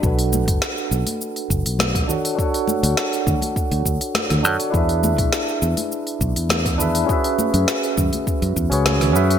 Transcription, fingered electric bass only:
X:1
M:4/4
L:1/16
Q:1/4=102
K:Bdor
V:1 name="Fingered electric bass" clef=bass
B,,,3 F,,, z2 B,,, z3 F,,, B,,,3 z2 | z3 D,, z2 D,, z2 D,, D,, z2 D,, F,, z | E,,3 B,,, z2 E,, z3 B,,, E,,4- E,, | z3 F,, z2 F,, z2 F,, E,, C,,3 F,, z |]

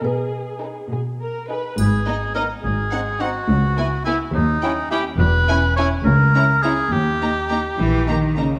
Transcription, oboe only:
X:1
M:6/8
L:1/8
Q:3/8=70
K:G#m
V:1 name="Oboe"
z6 | G2 A G2 F- | F2 E D2 =G | B2 c A2 G |
=G4- G z |]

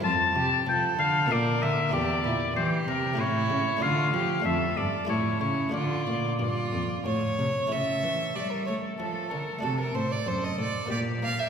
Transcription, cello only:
X:1
M:3/4
L:1/8
Q:1/4=95
K:Dm
V:1 name="Cello" clef=bass
F,, C, F, D, B,, D, | E,, B,, E, C, A,, ^C, | D, F, F,, G,, A,, ^C, | D, B,, G,, F,, A,, C, |
^C, E, G, A, F, D, | C, A,, ^F,, A,, B,, B, |]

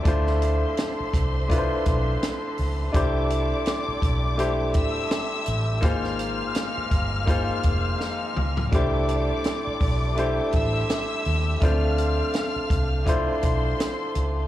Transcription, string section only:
X:1
M:4/4
L:1/8
Q:"Swing 16ths" 1/4=83
K:C
V:1 name="String section"
[cc']8 | [dd']4- [dd'] [ee']3 | [ff']8 | [dd']4- [dd'] [ee']3 |
[ff']4 [cc']4 |]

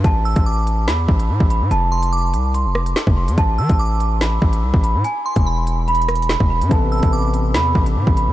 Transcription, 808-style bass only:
X:1
M:4/4
L:1/16
Q:1/4=144
K:Am
V:1 name="808-style bass" clef=bass
A,,,3 A,,,4- A,,, E,,2 A,,,2 A,, A,,,2 A,, | F,,,6 C,,3 F,,,3 z F,,,2 F,, | A,,,2 E, A,,,6- A,,, A,,,2 C,, A,,,2 A,, | z3 E,,,8- E,,,2 E,,,2 ^G,, |
A,,,3 A,,,4- A,,, E,,2 A,,,2 A,, A,,,2 A,, |]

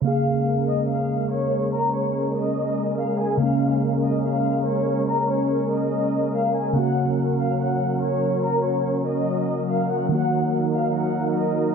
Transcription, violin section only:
X:1
M:4/4
L:1/8
Q:1/4=143
K:Bbm
V:1 name="Violin section"
[ff']2 z [ee'] [ff']2 [dd']2 | [Bb] [dd']2 [ee']3 [ff'] [Aa] | [ff']2 z [ee'] [ff']2 [dd']2 | [Bb] [dd']2 [ee']3 [ff'] [Aa] |
[gg']2 z [ff'] [gg']2 [dd']2 | [Bb] [dd']2 [ee']3 [ff'] [gg'] | [gg']2 z [ff'] [gg']2 [ee']2 |]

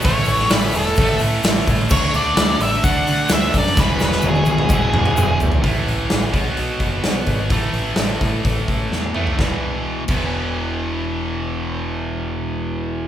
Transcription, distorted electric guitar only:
X:1
M:4/4
L:1/8
Q:1/4=128
K:Emix
V:1 name="Distorted electric guitar" clef=bass
[A,,E,A,]4 [A,,E,A,]4 | [D,A,D]4 [D,A,D]4 | [E,,B,,E,]4 [E,,B,,E,]4 | [A,,E,A,]3 [B,,F,B,]4- [B,,F,B,] |
[A,,E,A,]6- [A,,E,A,] [A,,E,A,] | [E,,B,,E,] z2 [E,,B,,E,]4- [E,,B,,E,]- | [E,,B,,E,]8 |]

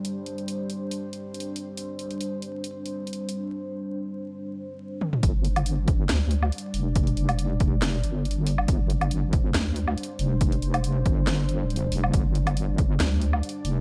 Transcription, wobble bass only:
X:1
M:4/4
L:1/8
Q:"Swing 16ths" 1/4=139
K:Cmix
V:1 name="Wobble bass" clef=bass
z8 | z8 | z8 | G,,,4 D,,2 z F,,,- |
F,,,3 F,,,2 G,,,3 | G,,,4 D,,2 z F,,,- | F,,,3 G,,,4 F,,, | G,,,4 D,,2 z F,,, |]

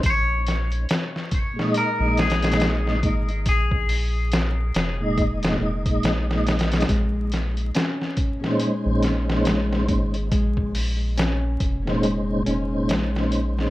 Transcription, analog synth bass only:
X:1
M:4/4
L:1/16
Q:"Swing 16ths" 1/4=70
K:Bbm
V:1 name="Analog synth bass" clef=bass
B,,,4 z4 z B,,,4- B,,, A,,,2 | B,,,6 F,,,4 F,,,2 B,,,4 | B,,,4 z4 z B,,,4- B,,, A,,,2 | B,,,6 F,,,4 F,,,2 B,,,4 |]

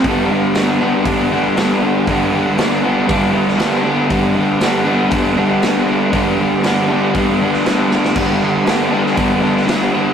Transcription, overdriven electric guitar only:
X:1
M:4/4
L:1/8
Q:1/4=118
K:G
V:1 name="Overdriven electric guitar"
[G,,D,G,B,D] [G,B,D] [D,G,B,D] [G,,D,G,B,D] [D,G,B,D] [G,B,D] [G,,D,G,B,D] [G,B,D] | [G,,D,G,B,D] [G,B,D] [D,G,B,D] [G,,D,G,B,D] [D,G,B,D] [G,B,D] [G,,D,G,B,D] [G,B,D] | [G,,D,G,B,D] [G,B,D] [D,G,B,D] [G,,D,G,B,D] [D,G,B,D] [G,B,D] [G,,D,G,B,D] [G,B,D] | [G,,D,G,B,D] [G,B,D] [D,G,B,D] [G,,D,G,B,D] [D,G,B,D] [G,B,D] [G,,D,G,B,D] [G,B,D] |
[G,,D,G,B,D] [G,B,D] [D,G,B,D] [G,,D,G,B,D] [D,G,B,D] [G,B,D] [G,,D,G,B,D] [G,B,D] |]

